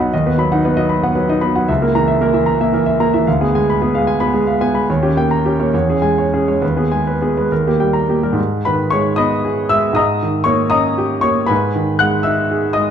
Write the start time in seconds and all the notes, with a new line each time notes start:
Already playing: B1 B3 D#4 B4 D#5 B5
0.00 F#3 F#5
0.14 D#2 D#5
0.26 B3 B4
0.38 F#3 B5
0.52 D#4 F#5
0.65 B3 B4
0.77 F#3 D#5
0.89 B5
1.03 B3 F#5
1.15 F#3 B4
1.29 D#4 D#5
1.41 B3 B5
1.56 F#3 F#5
1.68 C#2 E5
1.82 A#3 A#4
1.95 E3 A#5
2.08 E5
2.21 A#3 A#4
2.34 E3 E5
2.46 A#5
2.61 A#3 E5
2.73 E3 A#4
2.86 E5
3.00 A#3 A#5
3.14 E3 E5
3.27 D2 F5
3.41 B3 G#4
3.55 G#3 G#5
3.70 B5
3.82 B3 G#4
3.95 G#3 F5
4.07 G#5
4.20 B3 B5
4.34 G#3 G#4
4.47 F5
4.61 B3 G#5
4.74 G#3 B5
4.90 D#2 C#5
5.03 C#4 G4
5.17 A#3 G5
5.31 A#5
5.46 C#4 G4
5.60 A#3 C#5
5.74 E2 C#5
5.90 C#4 G#4
6.02 G#3 G#5
6.18 C#5
6.33 C#4 G#4
6.48 G#3 C#5
6.62 D#2 B4
6.77 B3 G#4
6.92 G#3 G#5
7.07 B4
7.22 B3 G#4
7.37 G#3 B4
7.51 D#2 A#4
7.67 A#3 G4
7.80 G3 G5
7.93 A#5
8.09 A#3 G4
8.23 G3 A#4
8.32 G#2
8.65 D#3 B4 B5
8.90 G#3 C#5 C#6
9.16 B3 D#5 B5 D#6
9.45 G#4
9.69 G#3 E5 E6
9.93 G#2 D#5 A#5 D#6
10.22 D#3
10.44 A#3 C#5 C#6
10.70 C#4 D#5 A#5 D#6
10.98 G4
11.21 A#3 C#5 C#6
11.46 G#2 B4 G#5 B5
11.76 D#3
11.99 G#3 F#5 F#6
12.23 D#4 E5 E6
12.51 G#4
12.73 G#3 D#5 D#6